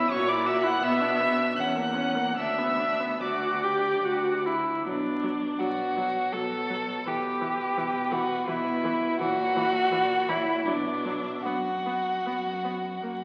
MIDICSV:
0, 0, Header, 1, 5, 480
1, 0, Start_track
1, 0, Key_signature, 2, "minor"
1, 0, Tempo, 729040
1, 66, Time_signature, 3, 2, 24, 8
1, 1028, Tempo, 824176
1, 2948, Tempo, 746269
1, 3908, Tempo, 718563
1, 6788, Tempo, 790514
1, 8354, End_track
2, 0, Start_track
2, 0, Title_t, "Violin"
2, 0, Program_c, 0, 40
2, 0, Note_on_c, 0, 88, 103
2, 68, Note_on_c, 0, 85, 127
2, 78, Note_off_c, 0, 88, 0
2, 185, Note_on_c, 0, 86, 103
2, 195, Note_off_c, 0, 85, 0
2, 304, Note_on_c, 0, 88, 109
2, 314, Note_off_c, 0, 86, 0
2, 411, Note_off_c, 0, 88, 0
2, 415, Note_on_c, 0, 90, 116
2, 543, Note_on_c, 0, 88, 127
2, 553, Note_off_c, 0, 90, 0
2, 1029, Note_on_c, 0, 90, 101
2, 1038, Note_off_c, 0, 88, 0
2, 1494, Note_off_c, 0, 90, 0
2, 1497, Note_on_c, 0, 88, 109
2, 1992, Note_on_c, 0, 86, 75
2, 2001, Note_off_c, 0, 88, 0
2, 2713, Note_off_c, 0, 86, 0
2, 3424, Note_on_c, 0, 74, 56
2, 3649, Note_off_c, 0, 74, 0
2, 3676, Note_on_c, 0, 73, 56
2, 4375, Note_off_c, 0, 73, 0
2, 4379, Note_on_c, 0, 71, 68
2, 5787, Note_off_c, 0, 71, 0
2, 5819, Note_on_c, 0, 73, 68
2, 6050, Note_off_c, 0, 73, 0
2, 6055, Note_on_c, 0, 76, 68
2, 6286, Note_on_c, 0, 74, 70
2, 6296, Note_off_c, 0, 76, 0
2, 6540, Note_on_c, 0, 73, 64
2, 6550, Note_off_c, 0, 74, 0
2, 6789, Note_on_c, 0, 74, 60
2, 6798, Note_off_c, 0, 73, 0
2, 7013, Note_on_c, 0, 76, 58
2, 7022, Note_off_c, 0, 74, 0
2, 7256, Note_on_c, 0, 78, 73
2, 7265, Note_off_c, 0, 76, 0
2, 8354, Note_off_c, 0, 78, 0
2, 8354, End_track
3, 0, Start_track
3, 0, Title_t, "Violin"
3, 0, Program_c, 1, 40
3, 0, Note_on_c, 1, 76, 97
3, 67, Note_off_c, 1, 76, 0
3, 71, Note_on_c, 1, 73, 109
3, 189, Note_on_c, 1, 74, 91
3, 199, Note_off_c, 1, 73, 0
3, 314, Note_on_c, 1, 76, 90
3, 324, Note_off_c, 1, 74, 0
3, 438, Note_on_c, 1, 78, 97
3, 448, Note_off_c, 1, 76, 0
3, 552, Note_on_c, 1, 76, 113
3, 561, Note_off_c, 1, 78, 0
3, 1048, Note_on_c, 1, 78, 86
3, 1057, Note_off_c, 1, 76, 0
3, 1505, Note_off_c, 1, 78, 0
3, 1508, Note_on_c, 1, 76, 93
3, 1990, Note_off_c, 1, 76, 0
3, 1999, Note_on_c, 1, 74, 60
3, 2703, Note_off_c, 1, 74, 0
3, 2942, Note_on_c, 1, 62, 72
3, 3420, Note_on_c, 1, 66, 73
3, 3430, Note_off_c, 1, 62, 0
3, 3892, Note_on_c, 1, 69, 79
3, 3901, Note_off_c, 1, 66, 0
3, 4391, Note_on_c, 1, 67, 65
3, 4401, Note_off_c, 1, 69, 0
3, 5087, Note_on_c, 1, 66, 76
3, 5097, Note_off_c, 1, 67, 0
3, 5323, Note_on_c, 1, 64, 73
3, 5333, Note_off_c, 1, 66, 0
3, 5804, Note_off_c, 1, 64, 0
3, 5808, Note_on_c, 1, 66, 108
3, 6539, Note_on_c, 1, 64, 90
3, 6549, Note_off_c, 1, 66, 0
3, 6784, Note_on_c, 1, 62, 78
3, 6794, Note_off_c, 1, 64, 0
3, 7259, Note_off_c, 1, 62, 0
3, 7264, Note_on_c, 1, 66, 74
3, 8354, Note_off_c, 1, 66, 0
3, 8354, End_track
4, 0, Start_track
4, 0, Title_t, "Viola"
4, 0, Program_c, 2, 41
4, 0, Note_on_c, 2, 64, 69
4, 71, Note_off_c, 2, 64, 0
4, 81, Note_on_c, 2, 66, 66
4, 192, Note_on_c, 2, 64, 67
4, 202, Note_off_c, 2, 66, 0
4, 303, Note_on_c, 2, 66, 76
4, 312, Note_off_c, 2, 64, 0
4, 420, Note_on_c, 2, 64, 70
4, 430, Note_off_c, 2, 66, 0
4, 537, Note_off_c, 2, 64, 0
4, 543, Note_on_c, 2, 59, 77
4, 663, Note_on_c, 2, 62, 69
4, 673, Note_off_c, 2, 59, 0
4, 790, Note_on_c, 2, 59, 76
4, 800, Note_off_c, 2, 62, 0
4, 903, Note_on_c, 2, 62, 59
4, 912, Note_off_c, 2, 59, 0
4, 1025, Note_off_c, 2, 62, 0
4, 1029, Note_on_c, 2, 61, 59
4, 1143, Note_on_c, 2, 58, 60
4, 1151, Note_off_c, 2, 61, 0
4, 1251, Note_on_c, 2, 61, 62
4, 1260, Note_off_c, 2, 58, 0
4, 1373, Note_on_c, 2, 58, 57
4, 1382, Note_off_c, 2, 61, 0
4, 1496, Note_off_c, 2, 58, 0
4, 1500, Note_on_c, 2, 62, 61
4, 1624, Note_on_c, 2, 59, 55
4, 1633, Note_off_c, 2, 62, 0
4, 1747, Note_on_c, 2, 62, 56
4, 1755, Note_off_c, 2, 59, 0
4, 1868, Note_on_c, 2, 59, 55
4, 1877, Note_off_c, 2, 62, 0
4, 1993, Note_off_c, 2, 59, 0
4, 1998, Note_on_c, 2, 66, 71
4, 2237, Note_on_c, 2, 67, 73
4, 2246, Note_off_c, 2, 66, 0
4, 2476, Note_on_c, 2, 66, 71
4, 2485, Note_off_c, 2, 67, 0
4, 2716, Note_on_c, 2, 64, 58
4, 2724, Note_off_c, 2, 66, 0
4, 2948, Note_off_c, 2, 64, 0
4, 2952, Note_on_c, 2, 54, 44
4, 3004, Note_off_c, 2, 54, 0
4, 3191, Note_on_c, 2, 54, 43
4, 3242, Note_off_c, 2, 54, 0
4, 3425, Note_on_c, 2, 54, 48
4, 3476, Note_off_c, 2, 54, 0
4, 3659, Note_on_c, 2, 54, 45
4, 3710, Note_off_c, 2, 54, 0
4, 3896, Note_on_c, 2, 54, 46
4, 3948, Note_off_c, 2, 54, 0
4, 4140, Note_on_c, 2, 54, 45
4, 4193, Note_off_c, 2, 54, 0
4, 4383, Note_on_c, 2, 52, 43
4, 4436, Note_off_c, 2, 52, 0
4, 4616, Note_on_c, 2, 52, 43
4, 4670, Note_off_c, 2, 52, 0
4, 4859, Note_on_c, 2, 52, 50
4, 4913, Note_off_c, 2, 52, 0
4, 5086, Note_on_c, 2, 52, 48
4, 5140, Note_off_c, 2, 52, 0
4, 5330, Note_on_c, 2, 52, 52
4, 5383, Note_off_c, 2, 52, 0
4, 5572, Note_on_c, 2, 52, 53
4, 5625, Note_off_c, 2, 52, 0
4, 5813, Note_on_c, 2, 52, 60
4, 5867, Note_off_c, 2, 52, 0
4, 6054, Note_on_c, 2, 52, 58
4, 6108, Note_off_c, 2, 52, 0
4, 6291, Note_on_c, 2, 52, 60
4, 6345, Note_off_c, 2, 52, 0
4, 6539, Note_on_c, 2, 52, 57
4, 6593, Note_off_c, 2, 52, 0
4, 6788, Note_on_c, 2, 54, 50
4, 6837, Note_off_c, 2, 54, 0
4, 7023, Note_on_c, 2, 54, 47
4, 7072, Note_off_c, 2, 54, 0
4, 7268, Note_on_c, 2, 59, 49
4, 7316, Note_off_c, 2, 59, 0
4, 7514, Note_on_c, 2, 59, 45
4, 7563, Note_off_c, 2, 59, 0
4, 7759, Note_on_c, 2, 59, 44
4, 7807, Note_off_c, 2, 59, 0
4, 7992, Note_on_c, 2, 59, 39
4, 8040, Note_off_c, 2, 59, 0
4, 8226, Note_on_c, 2, 58, 36
4, 8274, Note_off_c, 2, 58, 0
4, 8354, End_track
5, 0, Start_track
5, 0, Title_t, "Cello"
5, 0, Program_c, 3, 42
5, 69, Note_on_c, 3, 46, 93
5, 482, Note_off_c, 3, 46, 0
5, 538, Note_on_c, 3, 47, 97
5, 969, Note_off_c, 3, 47, 0
5, 1031, Note_on_c, 3, 40, 91
5, 1444, Note_off_c, 3, 40, 0
5, 1500, Note_on_c, 3, 38, 74
5, 1937, Note_off_c, 3, 38, 0
5, 1990, Note_on_c, 3, 38, 72
5, 2416, Note_off_c, 3, 38, 0
5, 2468, Note_on_c, 3, 38, 64
5, 2890, Note_off_c, 3, 38, 0
5, 2938, Note_on_c, 3, 47, 50
5, 3368, Note_off_c, 3, 47, 0
5, 3425, Note_on_c, 3, 47, 53
5, 3849, Note_off_c, 3, 47, 0
5, 3905, Note_on_c, 3, 47, 55
5, 4332, Note_off_c, 3, 47, 0
5, 4387, Note_on_c, 3, 47, 51
5, 4801, Note_off_c, 3, 47, 0
5, 4848, Note_on_c, 3, 47, 60
5, 5275, Note_off_c, 3, 47, 0
5, 5335, Note_on_c, 3, 47, 64
5, 5762, Note_off_c, 3, 47, 0
5, 5823, Note_on_c, 3, 46, 74
5, 6237, Note_off_c, 3, 46, 0
5, 6290, Note_on_c, 3, 46, 74
5, 6727, Note_off_c, 3, 46, 0
5, 6791, Note_on_c, 3, 47, 69
5, 7205, Note_off_c, 3, 47, 0
5, 7266, Note_on_c, 3, 42, 61
5, 7692, Note_off_c, 3, 42, 0
5, 7748, Note_on_c, 3, 42, 49
5, 8171, Note_off_c, 3, 42, 0
5, 8222, Note_on_c, 3, 42, 46
5, 8354, Note_off_c, 3, 42, 0
5, 8354, End_track
0, 0, End_of_file